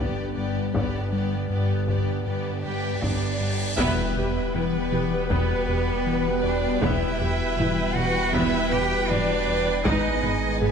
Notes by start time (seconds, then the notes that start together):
Already playing: G2 G3 B3 D4 G4 B4 D5
0.00 G1 G2 B3
0.34 G2 B3 G4 D5
0.72 G1 G2 G3 B3 D4 G4 B4 D5, taiko, cymbal swell
1.11 G3 B3 G4 D5
1.49 G1 G2 B3 G4 D5
1.88 G2 B3 G4 D5, taiko
2.25 G1 G2 B3 G4 D5
2.63 G2 B3 G4 D5 G5
3.01 G1 G2 B3 D4 G4 D5, taiko
3.39 G2 B3 G4 D5
3.77 E1 E2 B2 G3 B3 E4 G4 B4 E5 G5, taiko, impact
4.15 E1 E2 G4
4.54 E1 E2 E3 B3 E4 B4
4.92 E1 E2 E3 G4
5.30 E1 E2 B3 B4, taiko
5.68 E1 E2 G4
6.07 E3
6.43 E2 D4 D5
6.82 E1 E2 B2 G3 B3 E4 B4 E5 G5, taiko
7.20 E1 E2 G4
7.58 E1 E2 E3 E4, taiko low-mid
7.96 E1 E2 E3 G3 F#4 F#5
8.32 E1 E2 B3 E4 E5, taiko
8.71 E1 E2 G4 G5
9.09 E3 D4 D5, taiko low-mid
9.47 E2
9.84 G#1 G#2 D#3 G#3 B3 D#4 B4 D#5 G#5, taiko
9.89 B4
10.23 G#1 G#2 B4
10.61 G#1 G#2 G#3 B3 G#4 B4, taiko low-mid